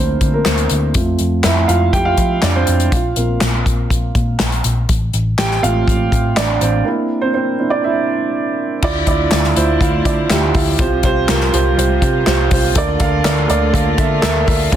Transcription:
Already playing: picked electric bass D2, upright piano F3 A3 A#3 C4 D4 E4 A4 A#4 C5
0.21 picked electric bass D3, kick, closed hi-hat
0.34 upright piano A#3 A#4
0.45 picked electric bass D2, upright piano C4 C5, snare, clap, closed hi-hat
0.58 closed hi-hat
0.70 picked electric bass D2, closed hi-hat
0.94 picked electric bass F2, upright piano A3 C4 F4, kick, closed hi-hat
1.19 picked electric bass F2, closed hi-hat
1.44 picked electric bass F2, upright piano E4 E5, snare, clap, closed hi-hat
1.68 picked electric bass F2, upright piano F4 F5, closed hi-hat
1.93 picked electric bass F2, upright piano G4 G5, kick, closed hi-hat
2.05 upright piano F4 F5
2.17 picked electric bass F3, kick, closed hi-hat
2.42 picked electric bass F2, upright piano D4 D5, snare, clap, closed hi-hat
2.55 upright piano C4 C5
2.67 picked electric bass F2, closed hi-hat
2.80 closed hi-hat
2.92 picked electric bass A#1, upright piano F4 F5, kick, closed hi-hat
3.16 picked electric bass A#1, upright piano A#3 C4 F4, closed hi-hat
3.41 picked electric bass A#1, snare, clap, closed hi-hat
3.66 picked electric bass A#1, kick, closed hi-hat
3.90 picked electric bass A#1, kick, closed hi-hat
4.15 picked electric bass A#2, kick, closed hi-hat
4.40 picked electric bass A#1, snare, clap, closed hi-hat
4.52 closed hi-hat
4.64 picked electric bass A#1, closed hi-hat
4.89 picked electric bass A1, kick, closed hi-hat
5.13 picked electric bass A1, closed hi-hat
5.38 picked electric bass A1, upright piano G4 G5, snare, clap, closed hi-hat
5.51 snare
5.62 picked electric bass A1, upright piano A3 C4 F4 F5, closed hi-hat
5.88 picked electric bass A1, kick, closed hi-hat
6.12 picked electric bass A2, kick, closed hi-hat
6.36 picked electric bass A1, upright piano D4 D5, snare, clap, closed hi-hat
6.61 picked electric bass A1, upright piano C4 C5, closed hi-hat
6.85 upright piano A#3 C4 D4 E4 A#4
7.21 upright piano C4 C5
7.34 upright piano C4 C5
7.59 upright piano C4 D4 E4
7.70 upright piano D4 D5
7.84 upright piano E4 E5
8.82 picked electric bass D2, string section D3 F3 A3 E4, upright piano D3 E4 F4 D5, kick, crash
9.06 picked electric bass D2, upright piano E4 F4 D5, kick, closed hi-hat
9.30 picked electric bass D2, upright piano E4 F4 D5, snare, clap, closed hi-hat
9.44 snare
9.56 picked electric bass D2, upright piano E4 F4 C5, closed hi-hat
9.80 picked electric bass D2, upright piano E4 F4 F5, kick, closed hi-hat
10.04 picked electric bass D3, upright piano E4 F4 D5, kick, closed hi-hat
10.29 picked electric bass D2, upright piano E4 F4 G4, snare, clap, closed hi-hat
10.54 picked electric bass D2, upright piano E4 F4 F5, kick, open hi-hat
10.78 picked electric bass C2, string section C3 G3 F4, upright piano C3 F4 G4 C5, kick, closed hi-hat
11.03 picked electric bass C2, upright piano F4 G4 C5, kick, closed hi-hat
11.27 picked electric bass C2, upright piano F4 G4 A#4, snare, clap, closed hi-hat
11.41 snare
11.52 picked electric bass C2, upright piano F4 G4 C5, closed hi-hat
11.77 picked electric bass C2, upright piano F4 G4 C5, closed hi-hat
12.01 picked electric bass C3, upright piano F4 G4 C5, kick, closed hi-hat
12.26 picked electric bass C2, upright piano F4 G4 C5, snare, clap, closed hi-hat
12.51 picked electric bass C2, upright piano F4 G4 C5, kick, open hi-hat
12.75 picked electric bass D2, string section D3 A3 A#3, upright piano D3 A4 A#4 D5, kick, closed hi-hat
12.99 picked electric bass D2, upright piano A4 A#4 F5, kick, closed hi-hat
13.24 picked electric bass D2, upright piano A4 A#4 D5, snare, clap, closed hi-hat
13.48 picked electric bass D2, upright piano A4 A#4 D5, closed hi-hat
13.73 picked electric bass D2, upright piano A4 A#4 F5, kick, closed hi-hat
13.98 picked electric bass D3, upright piano A4 A#4 E5, kick, closed hi-hat
14.21 picked electric bass D2, upright piano A4 A#4 E5, snare, clap, closed hi-hat
14.46 picked electric bass D2, upright piano A4 A#4 E5, kick, open hi-hat
14.72 picked electric bass C#2, upright piano C#3 F4 G#4 C#5, string section C#3 F3 G#3, kick, closed hi-hat

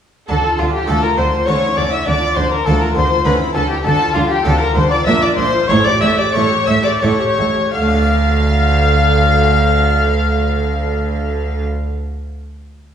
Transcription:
0.28 double bass section D2, harpsichord D3, cello section D3, viola section D4, violin section A4 A5, violin A4
0.44 viola section F4
0.58 double bass section D2, harpsichord D3, cello section D3, viola section D4, violin section F4 F5, violin F4
0.73 viola section F4, violin G4, violin section G4 G5
0.87 double bass section D2, harpsichord D3 A3 F4 A4, cello section D3, viola section D4, violin section A4 A5, violin A4
1.03 viola section F4, violin A#4, violin section A#4 A#5
1.17 double bass section D2, harpsichord D3, cello section D3, viola section D4, violin C5, violin section C5 C6
1.33 viola section F4
1.47 double bass section D2, harpsichord D3 A3 E4 A4, cello section D3, viola section C#4, violin section C#5 C#6, violin C#5
1.62 viola section E4
1.76 double bass section D2, harpsichord D3, cello section D3, viola section C#4, violin section D5 D6, violin D5
1.91 viola section E4, violin section E5 E6, violin E5
2.06 double bass section D2, harpsichord D3, cello section D3, viola section D4, violin section D5 D6, violin D5
2.21 viola section F4
2.36 double bass section D2, harpsichord D3, cello section D3, viola section D4, violin C5, violin section C5 C6
2.51 viola section F4, violin A#4, violin section A#4 A#5
2.65 double bass section D2, harpsichord D3 A3 D4 F4, cello section D3, viola section D4, violin A4, violin section A4 A5
2.81 viola section F4, violin section A#4 A#5, violin A#4
2.95 double bass section D2, harpsichord D3, cello section D3, viola section D4, violin C5, violin section C5 C6
3.10 viola section F4
3.25 double bass section D2, harpsichord D3 C#4 E4, cello section D3, viola section C#4, violin section B4 B5, violin B4
3.40 viola section E4
3.54 double bass section D2, harpsichord D3, cello section D3, viola section C#4, violin A4, violin section A4 A5
3.69 viola section E4, violin G4, violin section G4 G5
3.84 double bass section D2, harpsichord D3, cello section D3, viola section D4, violin section A4 A5, violin A4
3.99 viola section F4
4.14 double bass section D2, harpsichord D3, cello section D3, viola section D4, violin F4, violin section F4 F5
4.29 viola section F4, violin G4, violin section G4 G5
4.45 double bass section D2, harpsichord D3 D4 F4, cello section D3, viola section D4, violin A4, violin section A4 A5
4.60 viola section F4, violin section A#4 A#5, violin A#4
4.75 double bass section D2, harpsichord D3, cello section D3, viola section D4, violin section C5 C6, violin C5
4.90 viola section F4, violin section D5 D6, violin D5
5.06 double bass section A#1, harpsichord A#2 D4 F4, cello section A#2, viola section D4, violin section E5 E6, violin E5
5.21 viola section F4, violin section D5 D6, violin D5
5.36 double bass section A#1, harpsichord A#2, cello section A#2, viola section D4, violin section C5 C6, violin C5
5.53 viola section F4
5.68 double bass section A1, harpsichord A2, cello section A2, viola section A4, violin section C#5 C#6, violin C#5
5.84 viola section G4, violin D5, violin section D5 D6
6.01 double bass section A1, harpsichord A2, cello section A2, viola section A4, violin E5, violin section E5 E6
6.16 viola section G4, violin section D5 D6, violin D5
6.32 double bass section A1, harpsichord A2 E4 A4, cello section A2, viola section A4, violin section C#5 C#6, violin C#5
6.50 viola section G4
6.66 double bass section A1, cello section A2, harpsichord A2, viola section A4, violin section E5 E6, violin E5
6.83 viola section G4, violin section D5 D6, violin D5
6.99 double bass section A1, harpsichord A2 E4, cello section A2, viola section A4, violin section C#5 C#6, violin C#5
7.04 harpsichord A4
7.19 viola section G4
7.37 double bass section A1, harpsichord A2, cello section A2, viola section A4
7.55 viola section G4
7.72 double bass section D2, cello section D3, harpsichord D3, viola section A4, violin F5, violin section F5 F6
7.81 harpsichord A3
7.88 harpsichord D4
7.95 harpsichord A4
8.02 harpsichord D5

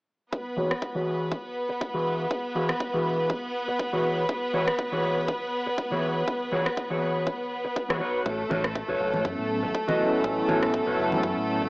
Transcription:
0.33 string section B3 B4, kick
0.56 clean electric guitar E3 F#4 G#4 C#5
0.71 cross-stick
0.81 muted clean electric guitar stroke, kick
0.95 clean electric guitar E3 F#4 G#4 C#5
1.32 kick
1.69 muted clean electric guitar stroke
1.80 muted clean electric guitar stroke, kick
1.94 clean electric guitar E3 F#4 G#4 B4
2.31 kick
2.55 clean electric guitar E3 F#4 G#4 B4
2.69 cross-stick
2.80 muted clean electric guitar stroke, kick
2.93 clean electric guitar E3 F#4 G#4 B4
3.30 kick
3.68 muted clean electric guitar stroke
3.79 muted clean electric guitar stroke, kick
3.93 clean electric guitar E3 F#4 G#4 C#5
4.29 kick
4.53 clean electric guitar E3 F#4 G#4 C#5
4.68 cross-stick
4.78 muted clean electric guitar stroke, kick
4.92 clean electric guitar E3 F#4 G#4 C#5
5.28 kick
5.66 muted clean electric guitar stroke
5.78 muted clean electric guitar stroke, kick
5.91 clean electric guitar E3 F#4 G#4 C#5
6.28 kick
6.52 clean electric guitar E3 F#4 G#4 C#5
6.66 cross-stick
6.77 muted clean electric guitar stroke, kick
6.90 clean electric guitar E3 F#4 G#4 C#5
7.27 kick
7.65 muted clean electric guitar stroke
7.76 muted clean electric guitar stroke, kick
7.89 clean electric guitar E3 F#4 G#4 C#5, cross-stick
8.00 clean electric guitar F#4 B4 C#5
8.26 fingered electric bass A1, string section A3 A4, kick
8.50 fingered electric bass A1, clean electric guitar F#4 B4 C#5, high conga
8.64 cross-stick
8.75 muted clean electric guitar stroke, kick
8.88 fingered electric bass F#1, clean electric guitar F#4 B4 C#5
9.00 fingered electric bass F#1
9.14 fingered electric bass A2, high conga
9.25 fingered electric bass F#2, analog synth pad F#3 B3 C#4 E4 A4, kick
9.39 fingered electric bass A2
9.49 analog synth pad F#3 B3 C#4 E4 A4
9.63 fingered electric bass A1, muted clean electric guitar stroke
9.74 muted clean electric guitar stroke, kick
9.87 analog synth pad F#3 B3 C#4 E4 A4, clean electric guitar F#4 B4 D#5, high conga
10.24 fingered electric bass A1, kick
10.48 fingered electric bass A1, clean electric guitar F#4 B4 C#5, high conga
10.63 cross-stick
10.73 muted clean electric guitar stroke, kick
10.87 fingered electric bass F#1, clean electric guitar F#4 B4 C#5
10.98 fingered electric bass F#1
11.12 fingered electric bass A2, high conga
11.23 fingered electric bass F#2, analog synth pad F#3 B3 C#4 E4 A4, kick
11.37 fingered electric bass A2
11.47 analog synth pad F#3 B3 C#4 E4 A4
11.61 fingered electric bass A1, muted clean electric guitar stroke

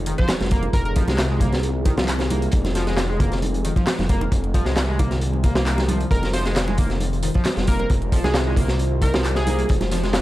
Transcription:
Already playing: detuned saw bass F1, ambient pad D#3 G#3 C4 F4 G#4, sub drop
0.06 analog synth lead D#3, closed hi-hat
0.18 analog synth lead F3, digital synth lead C5, kick, closed hi-hat
0.28 snare, clap, closed hi-hat, muted conga
0.40 detuned saw bass F1, snare, closed hi-hat, high conga
0.51 analog synth lead A#3, kick, closed hi-hat
0.63 closed hi-hat, muted conga
0.73 detuned saw bass F1, digital synth lead A#4, kick, closed hi-hat
0.85 digital synth lead A#4, closed hi-hat
0.96 analog synth lead F3, kick, closed hi-hat
1.08 detuned saw bass C2, analog synth lead G#3, snare, closed hi-hat, muted conga
1.18 snare, clap, closed hi-hat
1.31 analog synth lead G#3
1.40 analog synth lead A#3, kick, closed hi-hat, muted conga, low conga
1.53 snare, closed hi-hat
1.63 closed hi-hat
1.85 analog synth lead D#3, kick, closed hi-hat, muted conga
1.97 analog synth lead F3, snare, closed hi-hat, high conga
2.08 clap, closed hi-hat
2.19 snare, closed hi-hat, muted conga
2.30 analog synth lead A#3, closed hi-hat, high conga
2.42 closed hi-hat
2.51 detuned saw bass F1, kick, closed hi-hat
2.65 snare, closed hi-hat, muted conga
2.75 analog synth lead F3, snare, closed hi-hat
2.87 analog synth lead G#3, snare, closed hi-hat
2.97 snare, clap, closed hi-hat, muted conga
3.09 analog synth lead G#3
3.20 analog synth lead A#3, kick, closed hi-hat, low conga
3.32 snare, closed hi-hat
3.42 closed hi-hat, muted conga
3.54 closed hi-hat
3.65 analog synth lead D#3, closed hi-hat
3.76 analog synth lead F3, kick, closed hi-hat, muted conga
3.87 snare, clap, closed hi-hat
3.99 detuned saw bass F1, snare, closed hi-hat, high conga
4.09 analog synth lead A#3, kick, closed hi-hat
4.21 closed hi-hat, muted conga
4.32 detuned saw bass F1, kick, closed hi-hat
4.44 closed hi-hat
4.54 analog synth lead F3, kick, closed hi-hat, muted conga
4.66 detuned saw bass C2, analog synth lead G#3, snare, closed hi-hat
4.76 snare, clap, closed hi-hat
4.88 analog synth lead G#3
4.99 analog synth lead A#3, kick, closed hi-hat, muted conga, low conga
5.11 snare, closed hi-hat
5.21 closed hi-hat
5.33 muted conga
5.44 analog synth lead A#3, kick, closed hi-hat
5.55 analog synth lead A#3, snare, closed hi-hat, high conga
5.66 analog synth lead A#3, clap, closed hi-hat
5.78 snare, closed hi-hat, muted conga
5.88 detuned saw bass C2, analog synth lead F3, closed hi-hat, high conga
6.00 closed hi-hat
6.11 detuned saw bass F1, digital synth lead A#4, ambient pad C5, kick, closed hi-hat
6.23 snare, closed hi-hat, muted conga
6.33 analog synth lead F3, digital synth lead C5, snare, closed hi-hat, open hi-hat
6.45 analog synth lead G#3, snare, closed hi-hat
6.56 snare, clap, closed hi-hat
6.67 analog synth lead G#3, muted conga
6.77 analog synth lead A#3, kick, closed hi-hat, open hi-hat, low conga
6.90 snare, closed hi-hat
7.00 closed hi-hat, muted conga
7.13 closed hi-hat
7.23 analog synth lead D#3, closed hi-hat, open hi-hat
7.34 analog synth lead F3, kick, closed hi-hat
7.44 snare, clap, closed hi-hat, muted conga
7.57 detuned saw bass F1, snare, closed hi-hat, high conga
7.67 analog synth lead A#3, digital synth lead A#4, kick, closed hi-hat, open hi-hat
7.79 digital synth lead A#4, closed hi-hat, muted conga
7.90 detuned saw bass F1, kick, closed hi-hat
8.02 closed hi-hat
8.12 analog synth lead F3, kick, closed hi-hat, open hi-hat
8.24 detuned saw bass C2, analog synth lead G#3, digital synth lead G#4, snare, closed hi-hat, muted conga
8.34 snare, clap, closed hi-hat
8.47 analog synth lead G#3
8.56 analog synth lead A#3, kick, closed hi-hat, open hi-hat, muted conga, low conga
8.68 snare, closed hi-hat
8.79 closed hi-hat
9.02 analog synth lead D#3, digital synth lead A#4, kick, closed hi-hat, open hi-hat, muted conga
9.14 analog synth lead F3, snare, closed hi-hat, high conga
9.24 clap, closed hi-hat
9.36 digital synth lead G#4, snare, closed hi-hat, muted conga
9.47 analog synth lead A#3, closed hi-hat, open hi-hat, high conga
9.59 closed hi-hat
9.69 detuned saw bass F1, kick, closed hi-hat
9.81 snare, closed hi-hat, muted conga
9.91 analog synth lead F3, snare, closed hi-hat, open hi-hat
10.03 analog synth lead G#3, snare, closed hi-hat
10.13 snare, clap, closed hi-hat, muted conga

